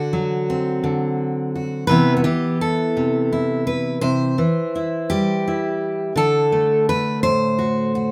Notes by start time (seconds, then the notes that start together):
Already playing: D3 F#4
0.13 F#3
0.50 C4
0.84 D3
1.55 F#4
1.87 C3 E3 B3 E4 B4
2.17 F#4
2.24 E3 G4
2.61 A4
2.97 C3
3.33 E4
3.67 B4
4.01 C3 C5
4.38 E3
4.75 E4
5.10 G3 G4
5.48 E4
6.16 D3 A4
6.52 A3
6.89 B4
7.23 A2 C5
7.59 F#4
7.95 F#4